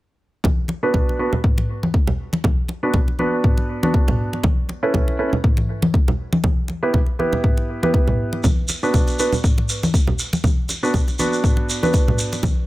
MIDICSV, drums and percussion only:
0, 0, Header, 1, 3, 480
1, 0, Start_track
1, 0, Key_signature, 2, "minor"
1, 0, Tempo, 500000
1, 423, Time_signature, 4, 2, 24, 8
1, 12160, End_track
2, 0, Start_track
2, 0, Title_t, "Shekere"
2, 8099, Note_on_c, 9, 82, 48
2, 8195, Note_off_c, 9, 82, 0
2, 8337, Note_on_c, 9, 82, 88
2, 8433, Note_off_c, 9, 82, 0
2, 8477, Note_on_c, 9, 82, 36
2, 8573, Note_off_c, 9, 82, 0
2, 8585, Note_on_c, 9, 82, 48
2, 8681, Note_off_c, 9, 82, 0
2, 8710, Note_on_c, 9, 82, 37
2, 8806, Note_off_c, 9, 82, 0
2, 8822, Note_on_c, 9, 82, 91
2, 8918, Note_off_c, 9, 82, 0
2, 8957, Note_on_c, 9, 82, 36
2, 9053, Note_off_c, 9, 82, 0
2, 9063, Note_on_c, 9, 82, 45
2, 9159, Note_off_c, 9, 82, 0
2, 9302, Note_on_c, 9, 82, 90
2, 9398, Note_off_c, 9, 82, 0
2, 9437, Note_on_c, 9, 82, 36
2, 9533, Note_off_c, 9, 82, 0
2, 9545, Note_on_c, 9, 82, 50
2, 9641, Note_off_c, 9, 82, 0
2, 9782, Note_on_c, 9, 82, 91
2, 9878, Note_off_c, 9, 82, 0
2, 9919, Note_on_c, 9, 82, 36
2, 10015, Note_off_c, 9, 82, 0
2, 10026, Note_on_c, 9, 82, 43
2, 10122, Note_off_c, 9, 82, 0
2, 10264, Note_on_c, 9, 82, 76
2, 10360, Note_off_c, 9, 82, 0
2, 10399, Note_on_c, 9, 82, 39
2, 10495, Note_off_c, 9, 82, 0
2, 10506, Note_on_c, 9, 82, 49
2, 10602, Note_off_c, 9, 82, 0
2, 10635, Note_on_c, 9, 82, 34
2, 10731, Note_off_c, 9, 82, 0
2, 10743, Note_on_c, 9, 82, 84
2, 10839, Note_off_c, 9, 82, 0
2, 10873, Note_on_c, 9, 82, 37
2, 10969, Note_off_c, 9, 82, 0
2, 10987, Note_on_c, 9, 82, 45
2, 11083, Note_off_c, 9, 82, 0
2, 11227, Note_on_c, 9, 82, 77
2, 11323, Note_off_c, 9, 82, 0
2, 11360, Note_on_c, 9, 82, 35
2, 11456, Note_off_c, 9, 82, 0
2, 11459, Note_on_c, 9, 82, 52
2, 11555, Note_off_c, 9, 82, 0
2, 11698, Note_on_c, 9, 82, 91
2, 11794, Note_off_c, 9, 82, 0
2, 11830, Note_on_c, 9, 82, 40
2, 11926, Note_off_c, 9, 82, 0
2, 11941, Note_on_c, 9, 82, 42
2, 12037, Note_off_c, 9, 82, 0
2, 12160, End_track
3, 0, Start_track
3, 0, Title_t, "Drums"
3, 421, Note_on_c, 9, 36, 104
3, 429, Note_on_c, 9, 63, 101
3, 433, Note_on_c, 9, 64, 105
3, 517, Note_off_c, 9, 36, 0
3, 525, Note_off_c, 9, 63, 0
3, 529, Note_off_c, 9, 64, 0
3, 654, Note_on_c, 9, 63, 55
3, 661, Note_on_c, 9, 62, 50
3, 750, Note_off_c, 9, 63, 0
3, 757, Note_off_c, 9, 62, 0
3, 901, Note_on_c, 9, 36, 95
3, 904, Note_on_c, 9, 64, 87
3, 997, Note_off_c, 9, 36, 0
3, 1000, Note_off_c, 9, 64, 0
3, 1049, Note_on_c, 9, 62, 35
3, 1145, Note_off_c, 9, 62, 0
3, 1273, Note_on_c, 9, 64, 80
3, 1369, Note_off_c, 9, 64, 0
3, 1382, Note_on_c, 9, 36, 112
3, 1384, Note_on_c, 9, 45, 84
3, 1478, Note_off_c, 9, 36, 0
3, 1480, Note_off_c, 9, 45, 0
3, 1513, Note_on_c, 9, 63, 54
3, 1515, Note_on_c, 9, 45, 75
3, 1516, Note_on_c, 9, 62, 49
3, 1609, Note_off_c, 9, 63, 0
3, 1611, Note_off_c, 9, 45, 0
3, 1612, Note_off_c, 9, 62, 0
3, 1758, Note_on_c, 9, 63, 91
3, 1854, Note_off_c, 9, 63, 0
3, 1861, Note_on_c, 9, 62, 35
3, 1862, Note_on_c, 9, 36, 95
3, 1957, Note_off_c, 9, 62, 0
3, 1958, Note_off_c, 9, 36, 0
3, 1991, Note_on_c, 9, 64, 85
3, 2087, Note_off_c, 9, 64, 0
3, 2234, Note_on_c, 9, 63, 87
3, 2241, Note_on_c, 9, 62, 45
3, 2330, Note_off_c, 9, 63, 0
3, 2337, Note_off_c, 9, 62, 0
3, 2342, Note_on_c, 9, 36, 112
3, 2342, Note_on_c, 9, 63, 93
3, 2348, Note_on_c, 9, 64, 99
3, 2438, Note_off_c, 9, 36, 0
3, 2438, Note_off_c, 9, 63, 0
3, 2444, Note_off_c, 9, 64, 0
3, 2577, Note_on_c, 9, 63, 56
3, 2581, Note_on_c, 9, 62, 46
3, 2673, Note_off_c, 9, 63, 0
3, 2677, Note_off_c, 9, 62, 0
3, 2819, Note_on_c, 9, 64, 92
3, 2822, Note_on_c, 9, 36, 98
3, 2915, Note_off_c, 9, 64, 0
3, 2918, Note_off_c, 9, 36, 0
3, 2956, Note_on_c, 9, 62, 37
3, 3052, Note_off_c, 9, 62, 0
3, 3059, Note_on_c, 9, 63, 59
3, 3155, Note_off_c, 9, 63, 0
3, 3303, Note_on_c, 9, 36, 110
3, 3303, Note_on_c, 9, 45, 84
3, 3399, Note_off_c, 9, 36, 0
3, 3399, Note_off_c, 9, 45, 0
3, 3432, Note_on_c, 9, 62, 43
3, 3528, Note_off_c, 9, 62, 0
3, 3677, Note_on_c, 9, 63, 93
3, 3773, Note_off_c, 9, 63, 0
3, 3782, Note_on_c, 9, 36, 100
3, 3785, Note_on_c, 9, 62, 33
3, 3878, Note_off_c, 9, 36, 0
3, 3881, Note_off_c, 9, 62, 0
3, 3913, Note_on_c, 9, 45, 91
3, 3917, Note_on_c, 9, 64, 90
3, 4009, Note_off_c, 9, 45, 0
3, 4013, Note_off_c, 9, 64, 0
3, 4159, Note_on_c, 9, 62, 51
3, 4255, Note_off_c, 9, 62, 0
3, 4257, Note_on_c, 9, 63, 98
3, 4260, Note_on_c, 9, 64, 103
3, 4262, Note_on_c, 9, 36, 114
3, 4353, Note_off_c, 9, 63, 0
3, 4356, Note_off_c, 9, 64, 0
3, 4358, Note_off_c, 9, 36, 0
3, 4500, Note_on_c, 9, 63, 55
3, 4505, Note_on_c, 9, 62, 48
3, 4596, Note_off_c, 9, 63, 0
3, 4601, Note_off_c, 9, 62, 0
3, 4742, Note_on_c, 9, 36, 99
3, 4746, Note_on_c, 9, 64, 104
3, 4838, Note_off_c, 9, 36, 0
3, 4842, Note_off_c, 9, 64, 0
3, 4875, Note_on_c, 9, 62, 36
3, 4971, Note_off_c, 9, 62, 0
3, 5114, Note_on_c, 9, 64, 72
3, 5210, Note_off_c, 9, 64, 0
3, 5222, Note_on_c, 9, 36, 117
3, 5222, Note_on_c, 9, 45, 88
3, 5318, Note_off_c, 9, 36, 0
3, 5318, Note_off_c, 9, 45, 0
3, 5347, Note_on_c, 9, 62, 47
3, 5352, Note_on_c, 9, 45, 78
3, 5354, Note_on_c, 9, 63, 61
3, 5443, Note_off_c, 9, 62, 0
3, 5448, Note_off_c, 9, 45, 0
3, 5450, Note_off_c, 9, 63, 0
3, 5591, Note_on_c, 9, 63, 106
3, 5687, Note_off_c, 9, 63, 0
3, 5701, Note_on_c, 9, 36, 105
3, 5713, Note_on_c, 9, 62, 32
3, 5797, Note_off_c, 9, 36, 0
3, 5809, Note_off_c, 9, 62, 0
3, 5837, Note_on_c, 9, 64, 87
3, 5933, Note_off_c, 9, 64, 0
3, 6072, Note_on_c, 9, 62, 50
3, 6072, Note_on_c, 9, 63, 86
3, 6168, Note_off_c, 9, 62, 0
3, 6168, Note_off_c, 9, 63, 0
3, 6179, Note_on_c, 9, 64, 105
3, 6181, Note_on_c, 9, 36, 111
3, 6182, Note_on_c, 9, 63, 98
3, 6275, Note_off_c, 9, 64, 0
3, 6277, Note_off_c, 9, 36, 0
3, 6278, Note_off_c, 9, 63, 0
3, 6415, Note_on_c, 9, 62, 44
3, 6428, Note_on_c, 9, 63, 57
3, 6511, Note_off_c, 9, 62, 0
3, 6524, Note_off_c, 9, 63, 0
3, 6661, Note_on_c, 9, 36, 101
3, 6661, Note_on_c, 9, 64, 99
3, 6757, Note_off_c, 9, 36, 0
3, 6757, Note_off_c, 9, 64, 0
3, 6782, Note_on_c, 9, 62, 33
3, 6878, Note_off_c, 9, 62, 0
3, 6907, Note_on_c, 9, 63, 54
3, 7003, Note_off_c, 9, 63, 0
3, 7033, Note_on_c, 9, 64, 79
3, 7129, Note_off_c, 9, 64, 0
3, 7141, Note_on_c, 9, 36, 113
3, 7143, Note_on_c, 9, 45, 80
3, 7237, Note_off_c, 9, 36, 0
3, 7239, Note_off_c, 9, 45, 0
3, 7271, Note_on_c, 9, 62, 46
3, 7367, Note_off_c, 9, 62, 0
3, 7517, Note_on_c, 9, 63, 96
3, 7613, Note_off_c, 9, 63, 0
3, 7621, Note_on_c, 9, 36, 101
3, 7624, Note_on_c, 9, 62, 33
3, 7717, Note_off_c, 9, 36, 0
3, 7720, Note_off_c, 9, 62, 0
3, 7752, Note_on_c, 9, 64, 78
3, 7755, Note_on_c, 9, 45, 86
3, 7848, Note_off_c, 9, 64, 0
3, 7851, Note_off_c, 9, 45, 0
3, 7994, Note_on_c, 9, 62, 48
3, 8090, Note_off_c, 9, 62, 0
3, 8101, Note_on_c, 9, 36, 110
3, 8101, Note_on_c, 9, 63, 96
3, 8112, Note_on_c, 9, 64, 96
3, 8197, Note_off_c, 9, 36, 0
3, 8197, Note_off_c, 9, 63, 0
3, 8208, Note_off_c, 9, 64, 0
3, 8345, Note_on_c, 9, 63, 50
3, 8349, Note_on_c, 9, 62, 44
3, 8441, Note_off_c, 9, 63, 0
3, 8445, Note_off_c, 9, 62, 0
3, 8581, Note_on_c, 9, 36, 95
3, 8582, Note_on_c, 9, 64, 97
3, 8677, Note_off_c, 9, 36, 0
3, 8678, Note_off_c, 9, 64, 0
3, 8712, Note_on_c, 9, 62, 36
3, 8808, Note_off_c, 9, 62, 0
3, 8951, Note_on_c, 9, 64, 68
3, 9047, Note_off_c, 9, 64, 0
3, 9061, Note_on_c, 9, 36, 107
3, 9065, Note_on_c, 9, 45, 77
3, 9157, Note_off_c, 9, 36, 0
3, 9161, Note_off_c, 9, 45, 0
3, 9194, Note_on_c, 9, 63, 57
3, 9196, Note_on_c, 9, 62, 43
3, 9198, Note_on_c, 9, 45, 68
3, 9290, Note_off_c, 9, 63, 0
3, 9292, Note_off_c, 9, 62, 0
3, 9294, Note_off_c, 9, 45, 0
3, 9440, Note_on_c, 9, 63, 105
3, 9536, Note_off_c, 9, 63, 0
3, 9541, Note_on_c, 9, 36, 98
3, 9551, Note_on_c, 9, 62, 33
3, 9637, Note_off_c, 9, 36, 0
3, 9647, Note_off_c, 9, 62, 0
3, 9671, Note_on_c, 9, 64, 77
3, 9767, Note_off_c, 9, 64, 0
3, 9916, Note_on_c, 9, 63, 84
3, 9918, Note_on_c, 9, 62, 50
3, 10012, Note_off_c, 9, 63, 0
3, 10014, Note_off_c, 9, 62, 0
3, 10021, Note_on_c, 9, 36, 105
3, 10021, Note_on_c, 9, 64, 98
3, 10022, Note_on_c, 9, 63, 93
3, 10117, Note_off_c, 9, 36, 0
3, 10117, Note_off_c, 9, 64, 0
3, 10118, Note_off_c, 9, 63, 0
3, 10261, Note_on_c, 9, 62, 50
3, 10264, Note_on_c, 9, 63, 55
3, 10357, Note_off_c, 9, 62, 0
3, 10360, Note_off_c, 9, 63, 0
3, 10501, Note_on_c, 9, 36, 94
3, 10503, Note_on_c, 9, 64, 98
3, 10597, Note_off_c, 9, 36, 0
3, 10599, Note_off_c, 9, 64, 0
3, 10635, Note_on_c, 9, 62, 40
3, 10731, Note_off_c, 9, 62, 0
3, 10748, Note_on_c, 9, 63, 60
3, 10844, Note_off_c, 9, 63, 0
3, 10980, Note_on_c, 9, 36, 106
3, 10983, Note_on_c, 9, 45, 78
3, 11076, Note_off_c, 9, 36, 0
3, 11079, Note_off_c, 9, 45, 0
3, 11106, Note_on_c, 9, 62, 47
3, 11202, Note_off_c, 9, 62, 0
3, 11357, Note_on_c, 9, 63, 90
3, 11453, Note_off_c, 9, 63, 0
3, 11460, Note_on_c, 9, 36, 101
3, 11462, Note_on_c, 9, 62, 41
3, 11556, Note_off_c, 9, 36, 0
3, 11558, Note_off_c, 9, 62, 0
3, 11593, Note_on_c, 9, 45, 86
3, 11599, Note_on_c, 9, 64, 74
3, 11689, Note_off_c, 9, 45, 0
3, 11695, Note_off_c, 9, 64, 0
3, 11833, Note_on_c, 9, 62, 48
3, 11929, Note_off_c, 9, 62, 0
3, 11933, Note_on_c, 9, 64, 101
3, 11939, Note_on_c, 9, 36, 103
3, 11942, Note_on_c, 9, 63, 99
3, 12029, Note_off_c, 9, 64, 0
3, 12035, Note_off_c, 9, 36, 0
3, 12038, Note_off_c, 9, 63, 0
3, 12160, End_track
0, 0, End_of_file